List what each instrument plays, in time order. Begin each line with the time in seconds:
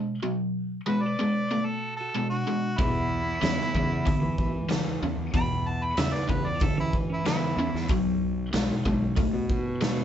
Already playing: overdriven electric guitar B2 G#3
0.23 overdriven electric guitar B2 F#3
0.87 overdriven electric guitar B2 G#3, lead electric guitar F#4, harmonica B4
1.02 lead electric guitar B4, harmonica D5
1.19 overdriven electric guitar B2 G#3
1.51 overdriven electric guitar B2 A3
1.66 lead electric guitar F#4, harmonica A4
1.97 harmonica A4
2.01 lead electric guitar F#4
2.16 overdriven electric guitar B2 G#3
2.30 lead electric guitar D4, harmonica F#4
2.48 overdriven electric guitar B2 G#3
2.78 overdriven electric guitar E2 B2, fingered electric bass E2, lead electric guitar B3, harmonica E4, kick, open hi-hat
3.42 overdriven electric guitar E2 C#3, fingered electric bass E2, snare, open hi-hat
3.60 snare
3.74 fingered electric bass E2, overdriven electric guitar E2 C#3, kick
4.06 overdriven electric guitar E2 D3, kick, open hi-hat
4.22 fingered electric bass E3
4.38 kick
4.69 overdriven electric guitar E2 C#3, snare, open hi-hat
5.02 fingered electric bass E2, overdriven electric guitar E2 C#3
5.18 fingered electric bass E2
5.33 fingered electric bass E2, overdriven electric guitar E2 B2, lead electric guitar G5, harmonica B5, kick, open hi-hat
5.67 lead electric guitar F#5, harmonica A5
5.83 lead electric guitar G5, harmonica B5
5.97 fingered electric bass E2, overdriven electric guitar E2 C#3, lead electric guitar B4, harmonica E5, snare, open hi-hat
6.13 lead electric guitar B4, harmonica D5, snare
6.29 overdriven electric guitar E2 C#3, fingered electric bass E2, lead electric guitar G4, harmonica B4, kick
6.47 lead electric guitar B4, harmonica D5
6.60 overdriven electric guitar E2 D3, lead electric guitar E4, harmonica A4, kick, open hi-hat
6.77 fingered electric bass E3, lead electric guitar C#4, harmonica E4
6.93 kick
7.10 lead electric guitar C#4, harmonica E4
7.24 overdriven electric guitar E2 C#3, lead electric guitar B3, harmonica E4, snare, open hi-hat
7.57 fingered electric bass E2, overdriven electric guitar E2 C#3
7.74 fingered electric bass E2, snare
7.88 fingered electric bass B1, overdriven electric guitar B2 F#3, kick, open hi-hat
8.53 fingered electric bass B1, overdriven electric guitar B2 G#3, snare, open hi-hat
8.86 fingered electric bass B1, overdriven electric guitar B2 G#3, kick
9.16 overdriven electric guitar B2 A3, kick, open hi-hat
9.34 fingered electric bass B2
9.50 kick
9.81 overdriven electric guitar B2 G#3, snare, open hi-hat